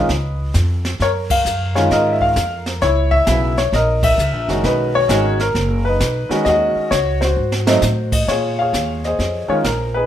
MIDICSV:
0, 0, Header, 1, 5, 480
1, 0, Start_track
1, 0, Key_signature, -5, "major"
1, 0, Tempo, 454890
1, 1052, Time_signature, 4, 2, 24, 8
1, 10618, End_track
2, 0, Start_track
2, 0, Title_t, "Grand piano"
2, 0, Program_c, 0, 0
2, 0, Note_on_c, 0, 71, 69
2, 0, Note_on_c, 0, 75, 98
2, 534, Note_off_c, 0, 75, 0
2, 541, Note_off_c, 0, 71, 0
2, 1077, Note_on_c, 0, 70, 64
2, 1078, Note_on_c, 0, 73, 92
2, 1146, Note_off_c, 0, 73, 0
2, 1384, Note_on_c, 0, 77, 97
2, 1850, Note_on_c, 0, 56, 69
2, 1851, Note_on_c, 0, 51, 77
2, 1851, Note_on_c, 0, 73, 71
2, 1858, Note_on_c, 0, 61, 74
2, 1864, Note_on_c, 0, 65, 87
2, 1872, Note_off_c, 0, 77, 0
2, 1983, Note_off_c, 0, 70, 0
2, 2019, Note_off_c, 0, 73, 0
2, 2023, Note_on_c, 0, 75, 87
2, 2039, Note_on_c, 0, 70, 66
2, 2242, Note_on_c, 0, 76, 64
2, 2244, Note_off_c, 0, 75, 0
2, 2335, Note_off_c, 0, 76, 0
2, 2338, Note_on_c, 0, 77, 96
2, 2461, Note_off_c, 0, 56, 0
2, 2462, Note_off_c, 0, 51, 0
2, 2465, Note_off_c, 0, 61, 0
2, 2469, Note_off_c, 0, 65, 0
2, 2782, Note_off_c, 0, 77, 0
2, 2945, Note_off_c, 0, 70, 0
2, 2975, Note_on_c, 0, 73, 96
2, 2990, Note_on_c, 0, 64, 66
2, 3283, Note_on_c, 0, 76, 107
2, 3301, Note_off_c, 0, 73, 0
2, 3447, Note_on_c, 0, 49, 57
2, 3450, Note_off_c, 0, 64, 0
2, 3455, Note_on_c, 0, 54, 49
2, 3460, Note_on_c, 0, 59, 49
2, 3465, Note_on_c, 0, 64, 62
2, 3734, Note_off_c, 0, 76, 0
2, 3737, Note_off_c, 0, 49, 0
2, 3740, Note_off_c, 0, 54, 0
2, 3743, Note_off_c, 0, 59, 0
2, 3746, Note_off_c, 0, 64, 0
2, 3777, Note_on_c, 0, 73, 80
2, 3942, Note_off_c, 0, 73, 0
2, 3950, Note_on_c, 0, 75, 93
2, 3961, Note_on_c, 0, 70, 70
2, 4264, Note_on_c, 0, 76, 100
2, 4269, Note_off_c, 0, 75, 0
2, 4705, Note_off_c, 0, 76, 0
2, 4735, Note_on_c, 0, 51, 57
2, 4737, Note_on_c, 0, 56, 49
2, 4741, Note_on_c, 0, 61, 51
2, 4745, Note_on_c, 0, 66, 64
2, 4866, Note_off_c, 0, 70, 0
2, 4901, Note_on_c, 0, 71, 85
2, 4917, Note_on_c, 0, 63, 61
2, 5225, Note_off_c, 0, 71, 0
2, 5225, Note_on_c, 0, 73, 101
2, 5344, Note_off_c, 0, 51, 0
2, 5345, Note_off_c, 0, 56, 0
2, 5347, Note_off_c, 0, 61, 0
2, 5349, Note_off_c, 0, 66, 0
2, 5368, Note_on_c, 0, 51, 70
2, 5379, Note_on_c, 0, 56, 63
2, 5382, Note_on_c, 0, 61, 68
2, 5388, Note_on_c, 0, 66, 81
2, 5657, Note_off_c, 0, 51, 0
2, 5662, Note_off_c, 0, 56, 0
2, 5664, Note_off_c, 0, 61, 0
2, 5667, Note_off_c, 0, 66, 0
2, 5705, Note_on_c, 0, 70, 80
2, 5713, Note_off_c, 0, 73, 0
2, 5824, Note_off_c, 0, 63, 0
2, 6145, Note_off_c, 0, 70, 0
2, 6171, Note_on_c, 0, 71, 88
2, 6213, Note_on_c, 0, 63, 60
2, 6640, Note_on_c, 0, 51, 68
2, 6650, Note_on_c, 0, 56, 65
2, 6653, Note_on_c, 0, 61, 63
2, 6655, Note_on_c, 0, 66, 78
2, 6772, Note_off_c, 0, 71, 0
2, 6793, Note_off_c, 0, 63, 0
2, 6805, Note_on_c, 0, 75, 107
2, 6830, Note_off_c, 0, 66, 0
2, 6846, Note_on_c, 0, 66, 82
2, 7256, Note_off_c, 0, 51, 0
2, 7261, Note_off_c, 0, 56, 0
2, 7263, Note_off_c, 0, 61, 0
2, 7290, Note_on_c, 0, 73, 87
2, 7304, Note_off_c, 0, 75, 0
2, 7607, Note_on_c, 0, 72, 77
2, 7618, Note_off_c, 0, 73, 0
2, 7627, Note_off_c, 0, 66, 0
2, 7642, Note_on_c, 0, 66, 59
2, 8090, Note_on_c, 0, 54, 85
2, 8093, Note_on_c, 0, 57, 73
2, 8098, Note_on_c, 0, 63, 94
2, 8102, Note_on_c, 0, 60, 83
2, 8237, Note_off_c, 0, 54, 0
2, 8238, Note_off_c, 0, 57, 0
2, 8241, Note_off_c, 0, 63, 0
2, 8243, Note_off_c, 0, 60, 0
2, 8526, Note_off_c, 0, 72, 0
2, 8544, Note_off_c, 0, 66, 0
2, 8580, Note_on_c, 0, 75, 75
2, 8741, Note_on_c, 0, 73, 79
2, 8743, Note_off_c, 0, 75, 0
2, 8763, Note_on_c, 0, 65, 59
2, 8766, Note_on_c, 0, 68, 60
2, 9062, Note_on_c, 0, 77, 85
2, 9063, Note_off_c, 0, 73, 0
2, 9073, Note_off_c, 0, 68, 0
2, 9089, Note_on_c, 0, 68, 56
2, 9093, Note_on_c, 0, 73, 57
2, 9502, Note_off_c, 0, 77, 0
2, 9548, Note_on_c, 0, 75, 75
2, 9556, Note_off_c, 0, 68, 0
2, 9572, Note_on_c, 0, 68, 58
2, 9572, Note_on_c, 0, 72, 55
2, 9665, Note_off_c, 0, 65, 0
2, 9988, Note_off_c, 0, 73, 0
2, 10008, Note_on_c, 0, 51, 73
2, 10008, Note_on_c, 0, 56, 65
2, 10012, Note_on_c, 0, 61, 59
2, 10017, Note_on_c, 0, 65, 74
2, 10021, Note_on_c, 0, 73, 80
2, 10032, Note_off_c, 0, 75, 0
2, 10074, Note_off_c, 0, 73, 0
2, 10155, Note_off_c, 0, 51, 0
2, 10155, Note_off_c, 0, 56, 0
2, 10157, Note_off_c, 0, 61, 0
2, 10159, Note_off_c, 0, 65, 0
2, 10180, Note_on_c, 0, 70, 70
2, 10467, Note_off_c, 0, 68, 0
2, 10467, Note_off_c, 0, 72, 0
2, 10471, Note_off_c, 0, 70, 0
2, 10493, Note_on_c, 0, 71, 88
2, 10517, Note_on_c, 0, 63, 53
2, 10517, Note_on_c, 0, 68, 58
2, 10618, Note_off_c, 0, 63, 0
2, 10618, Note_off_c, 0, 68, 0
2, 10618, Note_off_c, 0, 71, 0
2, 10618, End_track
3, 0, Start_track
3, 0, Title_t, "Upright bass"
3, 0, Program_c, 1, 32
3, 91, Note_on_c, 1, 37, 79
3, 557, Note_off_c, 1, 37, 0
3, 574, Note_on_c, 1, 41, 86
3, 1039, Note_off_c, 1, 41, 0
3, 1051, Note_on_c, 1, 42, 77
3, 1518, Note_off_c, 1, 42, 0
3, 1530, Note_on_c, 1, 42, 88
3, 1997, Note_off_c, 1, 42, 0
3, 2012, Note_on_c, 1, 44, 81
3, 2479, Note_off_c, 1, 44, 0
3, 2491, Note_on_c, 1, 41, 88
3, 2958, Note_off_c, 1, 41, 0
3, 2970, Note_on_c, 1, 37, 79
3, 3438, Note_off_c, 1, 37, 0
3, 3450, Note_on_c, 1, 35, 88
3, 3918, Note_off_c, 1, 35, 0
3, 3931, Note_on_c, 1, 34, 85
3, 4399, Note_off_c, 1, 34, 0
3, 4410, Note_on_c, 1, 37, 89
3, 4566, Note_off_c, 1, 37, 0
3, 4566, Note_on_c, 1, 34, 55
3, 4726, Note_off_c, 1, 34, 0
3, 4732, Note_on_c, 1, 30, 66
3, 4883, Note_off_c, 1, 30, 0
3, 4891, Note_on_c, 1, 35, 81
3, 5359, Note_off_c, 1, 35, 0
3, 5370, Note_on_c, 1, 32, 94
3, 5838, Note_off_c, 1, 32, 0
3, 5853, Note_on_c, 1, 30, 84
3, 6319, Note_off_c, 1, 30, 0
3, 6331, Note_on_c, 1, 35, 87
3, 6628, Note_off_c, 1, 35, 0
3, 6815, Note_on_c, 1, 39, 76
3, 7109, Note_off_c, 1, 39, 0
3, 7292, Note_on_c, 1, 37, 93
3, 7758, Note_off_c, 1, 37, 0
3, 7773, Note_on_c, 1, 44, 81
3, 8239, Note_off_c, 1, 44, 0
3, 8252, Note_on_c, 1, 45, 89
3, 8718, Note_off_c, 1, 45, 0
3, 8732, Note_on_c, 1, 46, 69
3, 9198, Note_off_c, 1, 46, 0
3, 9214, Note_on_c, 1, 39, 87
3, 9678, Note_off_c, 1, 39, 0
3, 9695, Note_on_c, 1, 41, 83
3, 9988, Note_off_c, 1, 41, 0
3, 10174, Note_on_c, 1, 34, 81
3, 10618, Note_off_c, 1, 34, 0
3, 10618, End_track
4, 0, Start_track
4, 0, Title_t, "Muted upright bass strokes"
4, 6643, Note_on_c, 9, 29, 39
4, 6748, Note_off_c, 9, 29, 0
4, 7128, Note_on_c, 9, 29, 37
4, 7234, Note_off_c, 9, 29, 0
4, 10006, Note_on_c, 9, 29, 34
4, 10111, Note_off_c, 9, 29, 0
4, 10618, End_track
5, 0, Start_track
5, 0, Title_t, "Drums"
5, 94, Note_on_c, 9, 25, 40
5, 94, Note_on_c, 9, 38, 42
5, 95, Note_on_c, 9, 36, 18
5, 200, Note_off_c, 9, 36, 0
5, 200, Note_off_c, 9, 38, 0
5, 571, Note_on_c, 9, 44, 62
5, 572, Note_on_c, 9, 38, 56
5, 575, Note_on_c, 9, 36, 24
5, 676, Note_off_c, 9, 44, 0
5, 678, Note_off_c, 9, 38, 0
5, 680, Note_off_c, 9, 36, 0
5, 894, Note_on_c, 9, 38, 43
5, 1000, Note_off_c, 9, 38, 0
5, 1054, Note_on_c, 9, 36, 20
5, 1055, Note_off_c, 9, 25, 0
5, 1055, Note_on_c, 9, 25, 49
5, 1055, Note_on_c, 9, 38, 41
5, 1160, Note_off_c, 9, 36, 0
5, 1161, Note_off_c, 9, 38, 0
5, 1373, Note_on_c, 9, 36, 72
5, 1373, Note_on_c, 9, 49, 68
5, 1479, Note_off_c, 9, 36, 0
5, 1479, Note_off_c, 9, 49, 0
5, 1538, Note_on_c, 9, 44, 65
5, 1644, Note_off_c, 9, 44, 0
5, 1856, Note_on_c, 9, 38, 39
5, 1962, Note_off_c, 9, 38, 0
5, 2013, Note_off_c, 9, 25, 0
5, 2013, Note_on_c, 9, 25, 49
5, 2013, Note_on_c, 9, 38, 42
5, 2014, Note_on_c, 9, 36, 16
5, 2119, Note_off_c, 9, 38, 0
5, 2120, Note_off_c, 9, 36, 0
5, 2331, Note_on_c, 9, 36, 46
5, 2436, Note_off_c, 9, 36, 0
5, 2490, Note_on_c, 9, 44, 51
5, 2491, Note_on_c, 9, 38, 57
5, 2493, Note_on_c, 9, 36, 20
5, 2596, Note_off_c, 9, 44, 0
5, 2597, Note_off_c, 9, 38, 0
5, 2598, Note_off_c, 9, 36, 0
5, 2809, Note_on_c, 9, 38, 42
5, 2914, Note_off_c, 9, 38, 0
5, 2970, Note_off_c, 9, 25, 0
5, 2970, Note_on_c, 9, 25, 40
5, 2970, Note_on_c, 9, 38, 43
5, 2973, Note_on_c, 9, 36, 25
5, 3075, Note_off_c, 9, 38, 0
5, 3078, Note_off_c, 9, 36, 0
5, 3290, Note_on_c, 9, 36, 50
5, 3395, Note_off_c, 9, 36, 0
5, 3446, Note_on_c, 9, 44, 64
5, 3447, Note_on_c, 9, 38, 63
5, 3452, Note_on_c, 9, 36, 22
5, 3552, Note_off_c, 9, 44, 0
5, 3553, Note_off_c, 9, 38, 0
5, 3558, Note_off_c, 9, 36, 0
5, 3772, Note_on_c, 9, 38, 40
5, 3878, Note_off_c, 9, 38, 0
5, 3935, Note_on_c, 9, 36, 28
5, 3938, Note_off_c, 9, 25, 0
5, 3938, Note_on_c, 9, 25, 42
5, 3938, Note_on_c, 9, 38, 48
5, 4040, Note_off_c, 9, 36, 0
5, 4044, Note_off_c, 9, 38, 0
5, 4252, Note_on_c, 9, 36, 83
5, 4253, Note_on_c, 9, 49, 76
5, 4357, Note_off_c, 9, 36, 0
5, 4358, Note_off_c, 9, 49, 0
5, 4420, Note_on_c, 9, 44, 59
5, 4526, Note_off_c, 9, 44, 0
5, 4737, Note_on_c, 9, 38, 42
5, 4842, Note_off_c, 9, 38, 0
5, 4894, Note_off_c, 9, 25, 0
5, 4894, Note_on_c, 9, 25, 46
5, 4894, Note_on_c, 9, 36, 21
5, 4894, Note_on_c, 9, 38, 44
5, 4999, Note_off_c, 9, 38, 0
5, 5000, Note_off_c, 9, 36, 0
5, 5373, Note_on_c, 9, 44, 61
5, 5374, Note_on_c, 9, 38, 66
5, 5375, Note_on_c, 9, 36, 21
5, 5478, Note_off_c, 9, 44, 0
5, 5479, Note_off_c, 9, 38, 0
5, 5480, Note_off_c, 9, 36, 0
5, 5693, Note_on_c, 9, 38, 39
5, 5799, Note_off_c, 9, 38, 0
5, 5856, Note_off_c, 9, 25, 0
5, 5856, Note_on_c, 9, 25, 47
5, 5856, Note_on_c, 9, 36, 26
5, 5856, Note_on_c, 9, 38, 47
5, 5961, Note_off_c, 9, 36, 0
5, 5961, Note_off_c, 9, 38, 0
5, 6335, Note_on_c, 9, 44, 54
5, 6336, Note_on_c, 9, 36, 17
5, 6336, Note_on_c, 9, 38, 63
5, 6441, Note_off_c, 9, 36, 0
5, 6441, Note_off_c, 9, 44, 0
5, 6442, Note_off_c, 9, 38, 0
5, 6655, Note_on_c, 9, 38, 44
5, 6760, Note_off_c, 9, 38, 0
5, 6813, Note_off_c, 9, 25, 0
5, 6813, Note_on_c, 9, 25, 42
5, 6813, Note_on_c, 9, 38, 44
5, 6815, Note_on_c, 9, 36, 25
5, 6918, Note_off_c, 9, 38, 0
5, 6921, Note_off_c, 9, 36, 0
5, 7296, Note_on_c, 9, 36, 25
5, 7298, Note_on_c, 9, 44, 51
5, 7299, Note_on_c, 9, 38, 60
5, 7402, Note_off_c, 9, 36, 0
5, 7403, Note_off_c, 9, 44, 0
5, 7404, Note_off_c, 9, 38, 0
5, 7614, Note_on_c, 9, 38, 43
5, 7720, Note_off_c, 9, 38, 0
5, 7936, Note_on_c, 9, 38, 57
5, 8042, Note_off_c, 9, 38, 0
5, 8095, Note_on_c, 9, 38, 88
5, 8200, Note_off_c, 9, 38, 0
5, 8249, Note_on_c, 9, 44, 54
5, 8250, Note_on_c, 9, 38, 49
5, 8354, Note_off_c, 9, 44, 0
5, 8355, Note_off_c, 9, 38, 0
5, 8570, Note_on_c, 9, 49, 71
5, 8571, Note_on_c, 9, 36, 78
5, 8676, Note_off_c, 9, 49, 0
5, 8677, Note_off_c, 9, 36, 0
5, 8736, Note_off_c, 9, 25, 0
5, 8736, Note_on_c, 9, 25, 39
5, 8736, Note_on_c, 9, 36, 21
5, 8736, Note_on_c, 9, 38, 41
5, 8841, Note_off_c, 9, 36, 0
5, 8841, Note_off_c, 9, 38, 0
5, 9216, Note_on_c, 9, 36, 18
5, 9219, Note_on_c, 9, 44, 53
5, 9220, Note_on_c, 9, 38, 54
5, 9321, Note_off_c, 9, 36, 0
5, 9325, Note_off_c, 9, 44, 0
5, 9326, Note_off_c, 9, 38, 0
5, 9541, Note_on_c, 9, 38, 35
5, 9647, Note_off_c, 9, 38, 0
5, 9697, Note_on_c, 9, 36, 21
5, 9703, Note_off_c, 9, 25, 0
5, 9703, Note_on_c, 9, 25, 49
5, 9703, Note_on_c, 9, 38, 43
5, 9803, Note_off_c, 9, 36, 0
5, 9809, Note_off_c, 9, 38, 0
5, 10176, Note_on_c, 9, 36, 19
5, 10176, Note_on_c, 9, 44, 51
5, 10177, Note_on_c, 9, 38, 59
5, 10281, Note_off_c, 9, 36, 0
5, 10281, Note_off_c, 9, 44, 0
5, 10282, Note_off_c, 9, 38, 0
5, 10618, Note_off_c, 9, 25, 0
5, 10618, End_track
0, 0, End_of_file